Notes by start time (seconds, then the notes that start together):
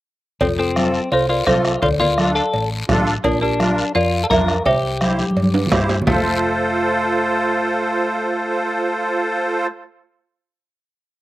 0.41 F1 C4 F4 A4, bombo low, cowbell, high conga, long guiro
0.59 C4 F4 A4
0.76 C4 F4 A4, bombo rim, high conga, short guiro
0.94 short guiro
1.12 C2 F4 A4 C5, cowbell, high conga, long guiro
1.29 F4 A#4 D5
1.47 C2 C4 F4 A4 C5, bombo low, bombo rim, high conga, short guiro
1.65 bombo rim, short guiro
1.82 D2 F4 A4 D5, bombo low, cowbell, high conga, long guiro
2.00 F4 A#4 D5, low conga
2.18 D4 F4 A4, bombo rim, high conga, short guiro
2.35 A4 D5 F5, short guiro
2.54 A1, cowbell, high conga, long guiro
2.89 A1 D4 F4 A4, bombo low, bombo rim, high conga, low conga, low timbale, short guiro
3.07 short guiro
3.24 A#1 D4 F4 A#4, bombo low, cowbell, high conga, long guiro
3.41 D4 G4 A#4
3.60 D4 F4 A#4, bombo rim, high conga, short guiro
3.78 short guiro
3.95 F2 F4 A#4 D5, cowbell, long guiro
4.24 A4 F5
4.30 F2 D4 F4 A#4 E5, bombo low, bombo rim, high conga, short guiro
4.48 bombo rim, short guiro
4.65 C2 G4 C5 E5, bombo low, cowbell, high conga, long guiro
5.01 E4 G4 C5, bombo rim, high conga, short guiro
5.19 high conga, short guiro
5.31 high conga
5.36 G2, cowbell, long guiro
5.43 high conga
5.54 high timbale
5.66 low conga
5.72 G2 E4 G4 C5, bombo low, bombo rim, low timbale, short guiro
5.89 low timbale, short guiro
6.02 low conga
6.07 F1 A3 F4 A4 C5 F5, bombo low, low conga, low timbale, long guiro